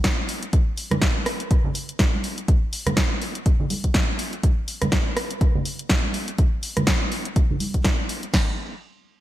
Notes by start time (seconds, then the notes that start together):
0.04 kick, snare, closed hi-hat
0.28 open hi-hat, tambourine
0.43 closed hi-hat, tambourine
0.53 kick, closed hi-hat
0.77 open hi-hat, tambourine
0.91 cross-stick, closed hi-hat, tambourine, high conga, low conga
1.02 kick, snare, closed hi-hat
1.26 cross-stick, open hi-hat
1.40 closed hi-hat, tambourine
1.51 kick, closed hi-hat
1.65 low conga
1.75 open hi-hat, tambourine
1.89 closed hi-hat, tambourine
1.99 kick, snare, closed hi-hat
2.13 high conga
2.23 open hi-hat, tambourine
2.38 closed hi-hat, tambourine
2.48 kick, closed hi-hat
2.73 open hi-hat, tambourine
2.86 cross-stick, closed hi-hat, tambourine, high conga, low conga
2.97 kick, snare, closed hi-hat, tambourine
3.22 open hi-hat, tambourine
3.35 closed hi-hat, tambourine
3.46 kick, closed hi-hat
3.60 low conga
3.70 open hi-hat, tambourine, high conga
3.84 kick, closed hi-hat, tambourine
3.94 kick, snare, closed hi-hat
4.19 open hi-hat, tambourine
4.33 closed hi-hat, tambourine
4.43 kick, closed hi-hat
4.68 open hi-hat, tambourine
4.81 cross-stick, closed hi-hat, tambourine, high conga, low conga
4.92 kick, snare, closed hi-hat
5.17 cross-stick, open hi-hat
5.30 closed hi-hat, tambourine
5.41 kick, closed hi-hat
5.55 low conga
5.64 open hi-hat, tambourine
5.79 closed hi-hat, tambourine
5.89 kick, snare, closed hi-hat, tambourine
6.03 high conga
6.14 open hi-hat, tambourine
6.28 closed hi-hat, tambourine
6.38 kick, closed hi-hat
6.63 open hi-hat, tambourine
6.77 cross-stick, closed hi-hat, tambourine, high conga, low conga
6.87 kick, snare, closed hi-hat, tambourine
7.11 open hi-hat, tambourine
7.25 closed hi-hat, tambourine
7.36 kick, closed hi-hat
7.51 low conga
7.60 open hi-hat, tambourine, high conga
7.74 kick, closed hi-hat
7.84 kick, snare, closed hi-hat, tambourine
8.09 open hi-hat, tambourine
8.23 closed hi-hat, tambourine
8.34 kick, snare, crash